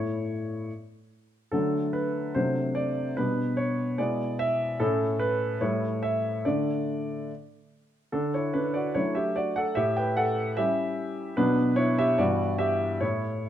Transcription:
0.00 0.42 A2 soft
0.00 0.51 A3 soft
0.00 0.51 E4 soft
0.00 0.68 C#5 medium
1.51 2.33 D3 soft
1.51 2.31 F#3 soft
1.51 2.31 A3 soft
1.51 2.32 D4 soft
1.51 1.93 A4 medium
1.93 2.35 B4 medium
2.35 3.15 C3 soft
2.35 3.13 F#3 soft
2.35 3.13 A3 soft
2.35 3.14 D4 soft
2.35 2.76 C5 medium
2.75 3.16 D5 medium
3.17 3.96 B2 soft
3.17 3.94 G3 soft
3.17 3.95 B3 soft
3.17 3.95 D4 soft
3.17 3.57 B4 medium
3.57 3.98 C#5 medium
3.98 4.77 B2 soft
3.98 4.75 G#3 soft
3.98 4.76 B3 soft
3.98 4.76 E4 soft
3.98 4.39 D5 medium
4.39 4.79 E5 medium
4.80 5.59 A2 medium
4.80 5.58 A3 soft
4.80 5.58 C#4 soft
4.80 5.58 E4 soft
4.80 5.20 A4 medium
5.19 5.61 B4 medium
5.61 6.42 A2 soft
5.61 6.41 G3 soft
5.61 6.41 A3 soft
5.61 6.42 E4 soft
5.61 6.02 C#5 medium
6.03 6.45 E5 medium
6.45 7.05 D3 soft
6.45 7.13 A3 soft
6.45 7.13 D4 soft
6.45 7.30 D5 medium
8.12 8.93 D3 soft
8.12 8.33 D4 soft
8.12 8.34 A4 medium
8.34 8.54 E4 soft
8.34 8.55 C#5 medium
8.53 8.74 D4 soft
8.53 8.75 B4 medium
8.74 8.95 F#4 soft
8.74 8.95 D5 medium
8.95 9.73 F#3 soft
8.95 9.73 A3 soft
8.95 9.73 D4 soft
8.95 9.15 E4 soft
8.95 9.16 C#5 medium
9.15 9.35 G4 soft
9.15 9.36 E5 medium
9.36 9.56 F#4 soft
9.36 9.57 D5 medium
9.56 9.76 A4 medium
9.56 9.77 F#5 medium
9.75 10.55 A2 medium
9.75 9.96 G4 medium
9.75 9.96 E5 medium
9.97 10.16 B4 medium
9.97 10.17 G5 medium
10.17 10.55 A4 medium
10.17 10.57 F#5 medium
10.57 11.34 G3 soft
10.57 11.34 C#4 soft
10.57 11.34 E4 soft
10.57 11.34 G4 medium
10.57 11.38 E5 medium
11.37 12.17 B2 medium
11.37 12.15 F#3 soft
11.37 12.16 B3 soft
11.37 11.76 D4 medium
11.37 11.78 B4 medium
11.76 11.97 E4 medium
11.76 11.98 C#5 medium
11.99 12.18 G4 medium
11.99 12.19 E5 medium
12.18 12.99 G2 medium
12.18 12.98 E3 soft
12.18 12.98 B3 soft
12.18 12.99 E4 soft
12.18 12.58 F#4 medium
12.18 12.60 D5 medium
12.58 12.99 G4 medium
12.58 13.01 E5 medium
13.01 13.49 A2 soft
13.01 13.49 E4 soft
13.01 13.49 C#5 medium

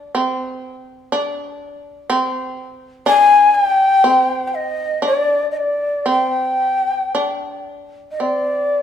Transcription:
0.00 0.14 D4 medium
0.15 1.12 C4 medium
1.12 2.09 D4 medium
2.10 3.06 C4 loud
3.06 4.04 D4 medium
3.06 3.56 G#5 loud
3.54 4.47 G5 loud
4.04 5.02 C4 medium
4.47 4.56 G5 medium
4.54 5.04 D#5 medium
5.02 6.05 D4 medium
5.06 5.46 D5 medium
5.51 5.59 D#5 medium
5.57 6.08 D5 medium
6.06 7.13 C4 medium
6.06 7.65 G5 medium
7.15 8.19 D4 medium
8.11 8.21 D#5 soft
8.20 8.82 C4 medium
8.20 8.82 D5 medium

